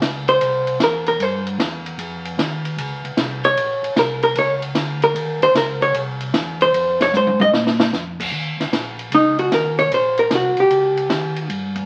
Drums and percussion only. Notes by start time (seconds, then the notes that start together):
0.02 snare, hi-hat pedal, ride
0.28 ride
0.41 ride
0.67 ride
0.80 snare, hi-hat pedal, ride
1.06 ride
1.20 ride
1.47 ride
1.60 snare, hi-hat pedal, ride
1.86 ride
1.99 ride
2.25 ride
2.39 snare, hi-hat pedal, ride
2.65 ride
2.78 ride
3.05 ride
3.17 snare, hi-hat pedal, ride
3.44 ride
3.57 ride
3.84 ride
3.96 snare, hi-hat pedal, ride
4.23 ride
4.35 ride
4.62 ride
4.75 snare, hi-hat pedal, ride
5.02 ride
5.16 ride
5.42 ride
5.55 snare, hi-hat pedal, ride
5.81 kick, ride
5.94 ride
6.21 ride
6.34 snare, hi-hat pedal, ride
6.61 ride
6.74 ride
7.00 snare, ride
7.14 hi-hat pedal, high tom
7.27 high tom
7.40 high tom
7.54 snare
7.67 snare
7.80 snare
7.93 snare, hi-hat pedal
8.20 kick, crash
8.60 snare, ride
8.73 snare, hi-hat pedal, ride
8.99 ride
9.12 ride
9.39 ride
9.52 snare, hi-hat pedal, ride
9.79 ride
9.92 ride
10.18 ride
10.31 snare, hi-hat pedal, ride
10.57 ride
10.71 ride
10.97 ride
11.10 snare, hi-hat pedal, ride
11.36 ride
11.50 ride
11.76 kick, ride